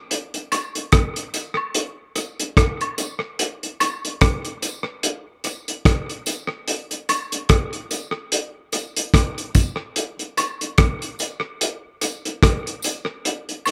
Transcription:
0.11 closed hi-hat
0.34 closed hi-hat
0.52 closed hi-hat, tambourine, high woodblock
0.75 closed hi-hat
0.92 kick, cross-stick, closed hi-hat
1.16 closed hi-hat
1.34 closed hi-hat, tambourine
1.57 high woodblock
1.75 closed hi-hat
2.16 closed hi-hat, tambourine
2.40 closed hi-hat
2.57 kick, cross-stick, closed hi-hat
2.81 closed hi-hat, high woodblock
2.98 closed hi-hat, tambourine
3.39 closed hi-hat
3.63 closed hi-hat
3.80 closed hi-hat, tambourine, high woodblock
4.05 closed hi-hat
4.21 kick, cross-stick, closed hi-hat
4.45 closed hi-hat
4.62 closed hi-hat, tambourine
5.03 closed hi-hat
5.44 closed hi-hat, tambourine
5.68 closed hi-hat
5.85 kick, cross-stick, closed hi-hat
6.09 closed hi-hat
6.26 closed hi-hat, tambourine
6.68 closed hi-hat
6.91 closed hi-hat
7.09 closed hi-hat, tambourine, high woodblock
7.32 closed hi-hat
7.49 kick, cross-stick, closed hi-hat
7.73 closed hi-hat
7.91 closed hi-hat, tambourine
8.32 closed hi-hat
8.72 closed hi-hat, tambourine
8.97 closed hi-hat
9.14 kick, cross-stick, closed hi-hat
9.38 closed hi-hat
9.55 kick, closed hi-hat, tambourine
9.96 closed hi-hat
10.19 closed hi-hat
10.37 closed hi-hat, tambourine, high woodblock
10.61 closed hi-hat
10.78 kick, cross-stick, closed hi-hat
11.02 closed hi-hat
11.19 closed hi-hat, tambourine
11.61 closed hi-hat
12.01 closed hi-hat, tambourine
12.25 closed hi-hat
12.43 kick, cross-stick, closed hi-hat
12.67 closed hi-hat
12.82 closed hi-hat, tambourine
13.25 closed hi-hat
13.49 closed hi-hat
13.66 closed hi-hat, tambourine, high woodblock

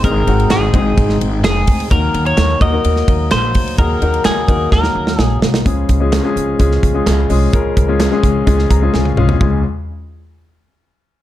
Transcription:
Already playing: G#2 G#3 C4 D#4 G#4
0.03 G#1 G#2 G#3 C4 D#4 G#4 A#4, kick, hi-hat pedal, ride
0.27 G#1 G#3 C4 D#4 F#4, ride
0.40 ride
0.50 G#1 G#4, snare, clap, ride
0.74 G#1 G#3 C4 D#4 G#4, kick, ride
0.98 G#1, kick, ride
1.09 snare
1.21 G#1, ride
1.44 F1 G#4, snare, clap, ride
1.67 D2, kick, open hi-hat, ride
1.80 ride
1.90 D#2 D#3 F#3 A#3 D#4 F#4 A#4, kick, hi-hat pedal, ride
2.14 D#2, ride
2.26 C#5, ride
2.38 D#2, snare, clap, ride
2.61 D#2 A#3 D#4 F#4 A#4 D#5, kick, ride
2.72 A#3 D#4 F#4 A#4
2.85 D#2, ride
2.96 snare
3.08 D#2, kick, ride
3.31 A#1 C5, snare, clap, ride
3.55 D2, kick, open hi-hat, ride
3.67 ride
3.78 D#2 D#3 A#3 D#4 F#4 G#4 A#4, kick, ride
4.01 D#2 A#3 D#4 F#4 A#4, ride
4.14 ride
4.25 D#2 G#4, snare, clap, ride
4.48 D#2 A#3 D#4 F#4 A#4, kick, ride
4.72 D#2 A#4, kick, snare
4.84 snare
4.95 D#2
5.07 snare
5.19 A#1 G#4, snare
5.42 C2, snare
5.54 snare
5.65 C#2 C#3 F3 G#3 C#4 F4 G#4, kick, closed hi-hat
5.89 C#2, kick, closed hi-hat
6.00 G#3 C#4 F4 G#4
6.13 snare, clap, closed hi-hat
6.24 G#3 C#4 F4 G#4
6.36 C#2, closed hi-hat
6.59 C#2 G#3 C#4 F4 G#4, kick, closed hi-hat
6.71 snare
6.83 C#2, kick, closed hi-hat
6.94 G#3 C#4 F4 G#4
7.06 C#2, snare, clap, closed hi-hat
7.29 C2 G#3 C#4 F4 G#4, open hi-hat
7.53 C#2 C#3 G#3 C#4 F4 A#4, kick, closed hi-hat
7.77 C#2, kick, closed hi-hat
7.88 G#3 C#4 F4 G#4
8.00 snare, clap, closed hi-hat
8.11 G#3 C#4 F4 G#4
8.23 C#2, kick, closed hi-hat
8.46 C#2 G#3 C#4 F4 G#4, kick, closed hi-hat
8.59 snare
8.70 C#2 A#5, kick, closed hi-hat
8.81 G#3 C#4 F4 G#4
8.94 C#2 G#5, snare
9.05 high tom
9.17 C2 G#3 C#4 F4 G#4 F5, mid tom
9.29 floor tom
9.41 C#2 F3 G#3 C#4 F4 G#4, kick, floor tom

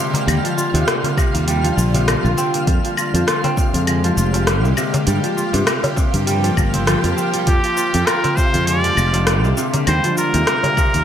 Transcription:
Already playing: C3 D3 G#3 A#3 C4 F4 G4 F5
0.14 A#3, open hi-hat, darbuka tek, darbuka dum, shaker
0.27 D#2 G3 F4, open hi-hat, claves, shaker
0.44 F3, open hi-hat, shaker
0.57 F4, shaker
0.74 D#2 C3, open hi-hat, shaker
0.87 A#3, cross-stick, open hi-hat, shaker
1.04 C3, open hi-hat, darbuka tek, darbuka dum, shaker
1.17 C3, kick, darbuka ka, claves, shaker
1.34 D#2 A#3, open hi-hat, shaker
1.48 G3, open hi-hat, shaker
1.64 F3, open hi-hat, shaker
1.77 A#1 F4, shaker
1.94 C3, open hi-hat, darbuka dum, shaker
2.07 F3, cross-stick, open hi-hat, claves, shaker
2.24 A#1 F4, shaker
2.37 C4, shaker
2.54 A#3, open hi-hat, shaker
2.67 F2 F3 G#3 G4, kick, open hi-hat, shaker
2.84 F3, open hi-hat, shaker
2.97 F4, claves, shaker
3.14 F2 F3, open hi-hat, darbuka ka, shaker
3.27 F4, cross-stick, open hi-hat, shaker
3.44 C4, open hi-hat, darbuka tek, darbuka dum, shaker
3.56 C3, kick, darbuka ka, shaker
3.73 F2 F3, open hi-hat, darbuka dum, shaker
3.87 G#3, open hi-hat, claves, shaker
4.04 F3, open hi-hat, shaker
4.17 F1 F4, shaker
4.33 F3, open hi-hat, darbuka ka, darbuka tek, shaker
4.47 A#3, cross-stick, open hi-hat, shaker
4.64 C2 C3, darbuka ka, shaker
4.77 C3, claves, shaker
4.94 A#3, open hi-hat, darbuka tek, darbuka dum, shaker
5.07 G2 F3 G3 A#3, open hi-hat, shaker
5.23 F3, open hi-hat, shaker
5.37 F4, shaker
5.53 G2 C3, open hi-hat, darbuka ka, shaker
5.66 A#3, cross-stick, open hi-hat, claves, shaker
5.83 C3, open hi-hat, darbuka tek, darbuka dum, shaker
5.96 C3, kick, darbuka ka, shaker
6.13 G2 A#3, open hi-hat, darbuka dum, shaker
6.26 G3, open hi-hat, shaker
6.43 F3, open hi-hat, darbuka tek, shaker
6.57 G1 F3, kick, darbuka tek, claves, shaker
6.74 C4, open hi-hat, darbuka dum, shaker
6.87 F3, cross-stick, open hi-hat, shaker
7.03 F2 F3, open hi-hat, shaker
7.17 C4, darbuka tek, shaker
7.34 G3, open hi-hat, shaker
7.47 F2 D3 F3 G#3 G4 F5, kick, open hi-hat, shaker
7.64 F3, open hi-hat, shaker
7.77 F4, shaker
7.94 F2 F3, open hi-hat, darbuka ka, shaker
8.06 F4 A#4, cross-stick, open hi-hat, claves, shaker
8.24 C4, open hi-hat, darbuka tek, darbuka dum, shaker
8.36 C3 C5, kick, darbuka ka, shaker
8.53 F2 F3, open hi-hat, darbuka dum, shaker
8.67 G#3 D5, open hi-hat, shaker
8.83 F3, open hi-hat, shaker
8.97 F1 F4, claves, shaker
9.13 F3, open hi-hat, darbuka ka, darbuka tek, shaker
9.27 A#3, cross-stick, open hi-hat, shaker
9.43 C2 C3, darbuka ka, shaker
9.57 C3, shaker
9.74 A#3, open hi-hat, darbuka tek, darbuka dum, shaker
9.87 D#2 G3 F4 C5, open hi-hat, claves, shaker
10.04 F3, open hi-hat, shaker
10.17 F4 A#4, shaker
10.34 D#2 C3, open hi-hat, shaker
10.47 A#3, cross-stick, open hi-hat, shaker
10.63 C3, open hi-hat, darbuka tek, darbuka dum, shaker
10.77 C3, kick, darbuka ka, claves, shaker
10.94 D#2 A#3, open hi-hat, shaker

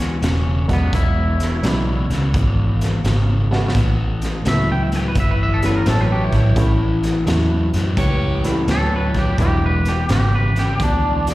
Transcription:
Already playing: D2 E2 B2 C#4
0.01 snare
0.22 E1 E2 C#3, snare, closed hi-hat
0.68 E1 E2 C#3 F#3 G#3 B3 F#4 D5, kick, snare, closed hi-hat
0.73 B3
0.92 E1 E2 B2 E4, kick, closed hi-hat
1.40 snare, closed hi-hat
1.63 B1 E2 C#3 F#3 G#3 B3 E4 D5, snare, closed hi-hat
2.10 C#2 E2 C#3, snare, closed hi-hat
2.34 G#1 E2 B2, kick, closed hi-hat
2.81 snare, closed hi-hat
3.04 G#1 E2 C#3, snare, closed hi-hat
3.51 E2 C#3 G3 A3 B3 C#4 F#4, snare
3.68 snare
3.74 A1 A2 E3, kick, snare, closed hi-hat
4.22 snare, closed hi-hat
4.45 C#2 A2 E3 F#3 A3 B3 C#4 E4 E5, snare, closed hi-hat
4.72 G5
4.83 E5
4.92 A2 F#3 G5, snare, closed hi-hat
5.08 B4
5.15 G1 A2 E3, kick, closed hi-hat
5.20 E5
5.31 B4
5.43 E5
5.54 A4
5.62 G3 A3 B3 C#4 E4 G4 B4 C#5, snare, closed hi-hat
5.66 B4
5.77 A#4
5.85 A1 A2 F#3 B4 C#5 G5, snare, closed hi-hat
5.90 A4
6.01 B4
6.12 G4
6.24 E4
6.32 A1 A2 F#3, kick, snare, closed hi-hat
6.56 A1 A2 E3 G3 A3 B3 C#4 E4, kick, snare, closed hi-hat
7.03 snare, closed hi-hat
7.26 E2 A2 E3 F#3 A3 B3 C#4 E4, snare, closed hi-hat
7.73 F#2 A2 F#3, snare, closed hi-hat
7.96 C#2 A2 E3 G4 B4 C#5, kick, snare, closed hi-hat
8.44 G3 A3 B3 C#4 E4, snare, closed hi-hat
8.67 D2 A2 F#3 B4 C#5 G5, snare, closed hi-hat
8.71 A4
8.96 B4
9.14 A2 F#3, kick, snare, closed hi-hat
9.19 G4
9.38 E1 E2 B2 F#3 G#3 B3 D4 E4 G4, kick, snare, closed hi-hat
9.66 B4
9.85 G4, snare, closed hi-hat
10.09 G#1 E2 C#3 G4, snare, closed hi-hat
10.35 B4
10.56 E2 C#3 G4, snare, closed hi-hat
10.80 D2 E2 B2 D4, kick, snare, closed hi-hat
11.26 F#4 G#4 D5, snare, closed hi-hat

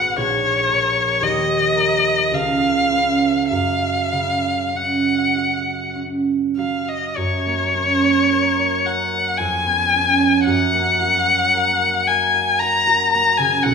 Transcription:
Already playing: G#1 D#4 F#4 B4 F#5
0.17 A#1 C#5
0.68 A#3 A#4
1.21 D#2 D#5
1.75 A#3 A#4
2.31 C#2 F5
2.90 C#4 B4
3.51 F#2 F5
4.12 C#3
4.74 C#4 F#5
5.35 F#4
5.95 C#4
6.57 F#3 F5
6.88 D#5
7.16 F#2 C#5
7.46 A#3
7.74 C#4
8.03 C#5
8.31 A#4
8.58 C#5
8.86 A#4 F#5
9.14 C#5
9.38 F2 G#5
9.65 B3
9.93 C#4
10.19 C#5
10.44 F#2 F#5
10.73 A#3
11.00 F#4
11.28 C#5
11.54 A#4
11.81 F#5
12.07 A#4 G#5
12.34 F#5
12.59 A#4 A#5
12.87 F#4
13.12 A#3 A#5
13.37 C#3 G#5
13.63 B1 F#5

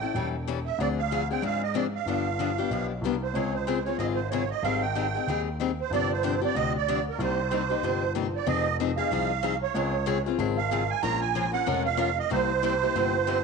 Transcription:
Already playing: G5
0.02 C#4 E4 A4
0.14 E1 E3 G3 C#4 E4 A4
0.47 E3 G3 C#4 E4 A4
0.66 E5
0.78 D2 D3 F3 C4 D4 G#4 D5
0.99 F5
1.11 D3 F3 C4 D4 G#4
1.31 C4 D4 G#4 G5
1.42 G#2 D3 F3 C4 D4 G#4 F5
1.63 D#5
1.74 D3 F3 C4 D4 G#4 D5
1.95 F5
2.06 G1 D3 F3 B3 D4 G4
2.39 D3 F3 B3 D4 G4
2.58 B3 D4 G4
2.70 B1 D3 F3 B3 D4 G4
3.01 C2 D3 F3 B3
3.05 D4 G4
3.23 C5
3.33 C#2 C#3 G#3 C4 F4 G#4 C#5
3.54 C5
3.67 C#3 G#3 C4 F4 G#4
3.85 C4 F4 G#4 C#5
3.98 G#1 C#3 G#3 C4 F4 G#4 D#5
4.15 C5
4.30 C#3 G#3 C4 F4 G#4 C#5
4.51 D#5
4.63 G#1 D#3 G3 C4 D#4 G#4 F5
4.82 G5
4.95 D#3 G3 C4 D#4 G#4
5.15 C4 D#4 G#4
5.27 D#2 D#3 G3 C4 D#4 G#4
5.60 D#3 G3 C4 D#4 G#4
5.81 C5
5.90 G1 C3 F3 C4 D4 G4 D5
6.13 C5
6.23 C3 F3 C4 D4 G4
6.42 C4 D4 G4 D5
6.54 D2 C3 F3 C4 D4 G4 D#5
6.77 D5
6.88 C3 F3 C4 D4 G4
7.09 A#4
7.19 C2 C3 G3 A#3 D#4 G4
7.23 C5
7.51 C3 G3 A#3 D#4 G4
7.70 A#3 D#4 G4
7.83 G1 C3 G3 A#3 D#4 G4
8.15 C3 G3 A#3 D#4 G4
8.36 D5
8.46 F1 F3 C4 D#4 G#4 D#5
8.80 F3 C4 D#4 G#4
8.97 C4 D#4 G#4 F5
9.11 C2 F3 C4 D#4 G#4
9.43 F3 C4 D#4 G#4
9.62 C#5
9.74 C#2 C#3 G#3 C4 F4 G#4
10.06 C#3 G#3 C4 F4 G#4
10.26 C4 F4 G#4
10.38 G#1 C#3 G#3 C4 F4 G#4
10.58 F5
10.71 C#3 G#3 C4 F4 G#4
10.90 G#5
11.03 A#1 F3 G#3 C#4 F4 A#4 A#5
11.21 G#5
11.35 F3 G#3 C#4 F4 A#4
11.52 C#4 F4 A#4 F#5
11.66 F1 F3 G#3 C#4 F4 A#4
11.85 F5
11.97 F3 G#3 C#4 F4 A#4
12.19 D#5
12.30 C2 C3 G3 A#3 E4 G4 C5
12.63 C3 G3 A#3 E4 G4
12.82 A#3 E4 G4
12.95 G1 C3 G3 A#3 E4 G4
13.27 C3 G3 A#3 E4 G4

